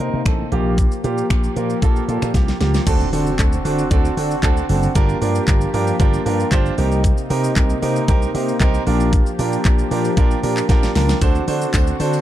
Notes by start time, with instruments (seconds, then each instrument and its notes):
Already playing: analog synth pad C3 A#3 D#4
0.00 grand piano C4 D#4 A#4, closed hi-hat
0.14 slap bass C3
0.26 slap bass A1, grand piano C4 D#4 A4, finger snap, kick, closed hi-hat
0.52 slap bass A#1, analog synth pad F3 G4, grand piano A#3 F4 G4, closed hi-hat
0.78 kick, closed hi-hat, shaker
0.92 shaker
1.04 slap bass A#2, grand piano A#3 F4 G4, closed hi-hat, shaker
1.18 shaker
1.30 slap bass A#1, grand piano A#3 F4 G4, finger snap, kick, closed hi-hat, shaker
1.44 shaker
1.56 slap bass A#2, grand piano A#3 F4 A#4, closed hi-hat, shaker
1.70 shaker
1.82 slap bass A#1, grand piano A#3 F4 A4, kick, closed hi-hat, shaker
1.96 shaker
2.08 slap bass A#2, grand piano A#3 F4 A4, closed hi-hat, shaker
2.22 slap bass A#2, finger snap, shaker
2.34 slap bass C2, grand piano A#3 F4 G4, kick, snare, closed hi-hat, shaker
2.48 snare, shaker
2.60 slap bass C#2, grand piano A#3 F4 G4, snare, closed hi-hat, shaker
2.74 snare, shaker
2.87 slap bass D2, analog synth pad D3 C4 F#4, grand piano C4 D4 F#4 A4, kick, closed hi-hat, crash, impact, shaker
3.00 shaker
3.13 slap bass D3, grand piano C4 D4 F#4 A4, open hi-hat, shaker
3.27 shaker
3.39 slap bass D2, grand piano C4 D4 F#4 A4, kick, clap, closed hi-hat, shaker
3.52 shaker
3.65 slap bass D3, grand piano C4 D4 F#4 A4, open hi-hat, shaker
3.79 shaker
3.91 slap bass D2, grand piano C4 D4 F#4 A4, kick, closed hi-hat, shaker
4.05 shaker
4.17 slap bass D3, grand piano C4 D4 F#4 A4, open hi-hat, shaker
4.31 shaker
4.43 slap bass D2, grand piano C4 D4 F#4 A4, kick, clap, closed hi-hat, shaker
4.57 shaker
4.69 slap bass F#1, grand piano C4 D4 F#4 A4, open hi-hat, shaker
4.83 shaker
4.95 slap bass G1, analog synth pad F3 A#3 G4, grand piano D4 F4 G4 A#4, kick, closed hi-hat, shaker
5.09 shaker
5.21 slap bass G2, grand piano D4 F4 G4 A#4, open hi-hat, shaker
5.35 shaker
5.47 slap bass G1, grand piano D4 F4 G4 A#4, kick, clap, closed hi-hat, shaker
5.61 shaker
5.74 slap bass G2, grand piano D4 F4 G4 A#4, open hi-hat, shaker
5.87 shaker
5.99 slap bass G1, grand piano D4 F4 G4 A#4, kick, closed hi-hat, shaker
6.14 shaker
6.26 slap bass G2, grand piano D4 F4 G4 A#4, open hi-hat, shaker
6.40 shaker
6.52 slap bass G1, grand piano D4 F4 G4 C5, kick, clap, closed hi-hat, shaker
6.66 shaker
6.78 slap bass C2, analog synth pad C3 A#3 D#4, grand piano C4 D#4 G4 A#4, open hi-hat, shaker
6.92 shaker
7.04 kick, closed hi-hat, shaker
7.18 shaker
7.30 slap bass C3, grand piano C4 D#4 G4 A#4, open hi-hat, shaker
7.44 shaker
7.56 slap bass C2, grand piano C4 D#4 G4 A#4, kick, clap, closed hi-hat, shaker
7.70 shaker
7.82 slap bass C3, grand piano C4 D#4 G4 A#4, open hi-hat, shaker
7.96 shaker
8.08 slap bass C2, grand piano C4 D#4 G4 A#4, kick, closed hi-hat, shaker
8.22 shaker
8.34 slap bass C3, grand piano C4 D#4 G4 A#4, open hi-hat, shaker
8.48 shaker
8.60 slap bass C2, grand piano C4 D#4 G4 A#4, kick, clap, closed hi-hat, shaker
8.74 shaker
8.87 slap bass A#1, analog synth pad F3 G4, grand piano D4 F4 G4 A#4, open hi-hat, shaker
9.00 shaker
9.13 kick, closed hi-hat, shaker
9.26 shaker
9.39 slap bass A#2, grand piano D4 F4 G4 A#4, open hi-hat, shaker
9.53 shaker
9.65 slap bass A#1, grand piano D4 F4 G4 A#4, kick, clap, closed hi-hat, shaker
9.78 shaker
9.91 slap bass A#2, grand piano D4 F4 G4 A#4, open hi-hat, shaker
10.05 shaker
10.17 slap bass A#1, grand piano D4 F4 G4 A#4, kick, closed hi-hat, shaker
10.31 shaker
10.43 slap bass A#2, grand piano D4 F4 G4 A#4, open hi-hat, shaker
10.57 clap, shaker
10.69 slap bass A#1, grand piano D4 F4 G4 A#4 D5, kick, snare, closed hi-hat, shaker
10.83 snare, shaker
10.95 slap bass C#2, grand piano D4 F4 G4 A#4, snare, open hi-hat, shaker
11.09 snare, shaker
11.21 slap bass D2, analog synth pad D3 C4 F#4, grand piano D4 F#4 A4 C5, kick, closed hi-hat, tambourine, shaker
11.35 shaker
11.47 slap bass D3, grand piano D4 F#4 A4 C5, open hi-hat, tambourine, shaker
11.61 shaker
11.73 slap bass D2, grand piano D4 F#4 A4 C5, kick, clap, closed hi-hat, tambourine, shaker
11.87 shaker
12.00 slap bass D3, grand piano D4 F#4 A4 C5, open hi-hat, tambourine, shaker
12.13 tambourine, shaker